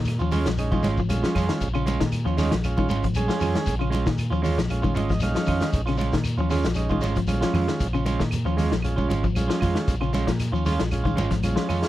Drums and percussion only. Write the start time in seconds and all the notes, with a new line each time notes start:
0.05 snare, closed hi-hat, high conga, claves, shekere
0.19 shekere
0.31 open hi-hat, high conga, low conga, shekere
0.45 snare, closed hi-hat, shekere
0.57 closed hi-hat, high conga, claves, shekere
0.72 kick, high conga, shekere
0.83 snare, closed hi-hat, high conga, low conga, shekere
0.97 kick, shekere
1.09 closed hi-hat, high conga, claves, shekere
1.23 snare, shekere
1.35 kick, open hi-hat, high conga, low conga, claves, shekere
1.49 snare, closed hi-hat, shekere
1.61 kick, closed hi-hat, high conga, shekere
1.75 claves, shekere
1.87 closed hi-hat, high conga, shekere
2.00 kick, snare, closed hi-hat, shekere
2.12 closed hi-hat, high conga, claves, shekere
2.26 shekere
2.38 snare, open hi-hat, high conga, low conga, shekere
2.52 snare, closed hi-hat, shekere
2.64 closed hi-hat, high conga, claves, shekere
2.77 kick, high conga, shekere
2.89 closed hi-hat, high conga, low conga, shekere
3.03 kick, closed hi-hat, shekere
3.15 closed hi-hat, high conga, claves, shekere
3.28 snare, shekere
3.40 open hi-hat, high conga, low conga, claves, shekere
3.55 snare, closed hi-hat, shekere
3.66 kick, closed hi-hat, shekere
3.71 high conga
3.80 claves, shekere
3.92 closed hi-hat, high conga, shekere
4.06 kick, snare, shekere
4.18 closed hi-hat, high conga, claves, shekere
4.32 shekere
4.44 open hi-hat, low conga, shekere
4.57 snare, closed hi-hat, shekere
4.69 closed hi-hat, high conga, claves, shekere
4.83 kick, high conga, shekere
4.95 closed hi-hat, high conga, low conga, shekere
5.09 kick, snare, shekere
5.20 snare, closed hi-hat, high conga, claves, shekere
5.34 snare, shekere
5.46 kick, open hi-hat, low conga, claves, shekere
5.60 snare, closed hi-hat, shekere
5.73 kick, closed hi-hat, high conga, shekere
5.87 snare, claves, shekere
5.98 closed hi-hat, high conga, shekere
6.12 kick, snare, closed hi-hat, shekere
6.24 closed hi-hat, high conga, claves, shekere
6.38 shekere
6.50 snare, open hi-hat, low conga, shekere
6.64 snare, closed hi-hat, shekere
6.74 closed hi-hat, high conga, claves, shekere
6.89 kick, high conga, shekere
7.01 snare, closed hi-hat, high conga, shekere
7.15 kick, closed hi-hat, shekere
7.27 closed hi-hat, high conga, claves, shekere
7.42 snare, shekere
7.54 open hi-hat, low conga, claves, shekere
7.68 snare, closed hi-hat, shekere
7.80 kick, snare, closed hi-hat, high conga, shekere
7.93 claves, shekere
8.06 closed hi-hat, high conga, shekere
8.20 kick, snare, shekere
8.31 closed hi-hat, high conga, low conga, claves, shekere
8.46 shekere
8.58 snare, open hi-hat, low conga, shekere
8.72 snare, closed hi-hat, shekere
8.82 closed hi-hat, high conga, claves, shekere
8.98 kick, high conga, shekere
9.10 closed hi-hat, high conga, low conga, shekere
9.24 kick, shekere
9.35 closed hi-hat, high conga, claves, shekere
9.49 snare, shekere
9.61 kick, open hi-hat, low conga, claves, shekere
9.76 snare, closed hi-hat, shekere
9.88 kick, closed hi-hat, high conga, shekere
10.01 claves, shekere
10.13 snare, closed hi-hat, high conga, shekere
10.27 kick, snare, closed hi-hat, shekere
10.39 snare, closed hi-hat, high conga, claves, shekere
10.55 shekere
10.66 snare, open hi-hat, high conga, low conga, shekere
10.79 snare, closed hi-hat, shekere
10.91 closed hi-hat, high conga, claves, shekere
11.05 kick, high conga, shekere
11.17 closed hi-hat, high conga, low conga, shekere
11.31 kick, snare, closed hi-hat, shekere
11.43 closed hi-hat, high conga, claves, shekere
11.56 snare, shekere
11.69 open hi-hat, low conga, claves, shekere
11.83 snare, closed hi-hat, shekere